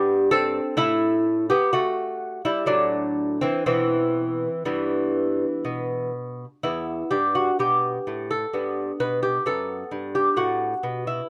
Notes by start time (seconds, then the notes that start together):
Already playing: G2 B3 G4
0.31 C4 A4
0.77 A2 A3 E4
1.50 B3 G4
1.73 A3 F#4
2.45 G3 E4
2.66 A2 F#3 D4
3.41 E3 C4
3.66 B2 E3 C4
4.65 G2 E3 B3
5.65 B2
6.63 E2 B3 E4
7.11 G2 G4
7.35 F#4
7.59 B2 G4
8.07 A2
8.31 A4
8.53 G2 B3
9.00 B2 B4
9.23 G4
9.46 F#2 B3 A4
9.91 G2
10.15 G4
10.37 A2 F#4
10.83 B2
11.07 E4